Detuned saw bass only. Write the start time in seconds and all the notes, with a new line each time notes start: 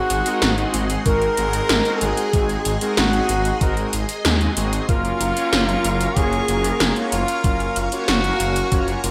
0.10 G#1
0.42 G#1
0.74 G#1
1.06 G#1
1.38 G#1
1.70 G#1
2.02 G#1
2.33 G#1
2.66 G#1
2.97 G#1
3.29 G#1
3.61 G#1
3.93 G#1
4.25 D#2
4.57 G#1
4.89 F#1
5.21 F#1
5.53 F#1
5.85 F#1
6.16 F#1
6.48 F#1
6.80 F#1
7.12 F#1
7.44 F#1
7.76 F#1
8.08 F#1
8.40 F#1
8.72 F#1
9.04 F#1